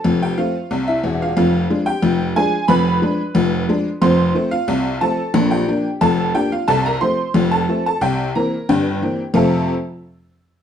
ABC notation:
X:1
M:2/4
L:1/16
Q:1/4=90
K:F
V:1 name="Honky-tonk piano"
[Aa] [Gg] [Ff]3 [Ee]2 [Ff] | [Ff]3 [Gg]3 [_A_a]2 | [_c_c']8 | [cc']3 [Ff]3 [Aa]2- |
[Aa] [Gg]3 [Aa]2 [Gg] [Ff] | [Aa] [Bb] [cc']3 [Aa]2 [Aa] | [Gg]2 [Bb]2 [Gg]4 | [F,,C,A,CFAf]2 z6 |]
V:2 name="Honky-tonk piano" clef=bass
[F,,,F,,]2 [F,A,C]2 [C,,C,]2 [E,,,E,,]2 | [F,,,F,,]2 [F,_A,D]2 [F,,,F,,]2 [F,A,D]2 | [F,,,F,,]2 [F,_A,D]2 [F,,,F,,]2 [F,A,D]2 | [F,,,F,,]2 [F,A,C]2 [C,,C,]2 [F,A,C]2 |
[B,,,B,,]2 [F,B,D]2 [F,,,F,,]2 [F,B,D]2 | [C,,C,]2 [F,A,C]2 [F,,,F,,]2 [F,A,C]2 | [C,,C,]2 [E,B,C]2 [G,,,G,,]2 [E,B,C]2 | z8 |]